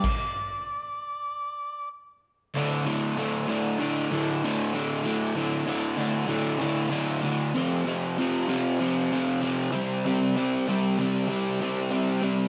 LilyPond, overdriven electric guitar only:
\new Staff \with { instrumentName = "Overdriven electric guitar" } { \clef bass \time 4/4 \key c \lydian \tempo 4 = 96 r1 | <d, a, d>8 <d, a, d>8 <d, a, d>8 <d, a, d>8 <d, a, d>8 <d, a, d>8 <d, a, d>8 <d, a, d>8 | <d, a, d>8 <d, a, d>8 <d, a, d>8 <d, a, d>8 <d, a, d>8 <d, a, d>8 <d, a, d>8 <d, a, d>8 | <f, c f>8 <f, c f>8 <f, c f>8 <f, c f>8 <f, c f>8 <f, c f>8 <f, c f>8 <c g c'>8 |
<c g c'>8 <c g c'>8 <c g c'>8 <c g c'>8 <c g c'>8 <c g c'>8 <c g c'>8 <c g c'>8 | }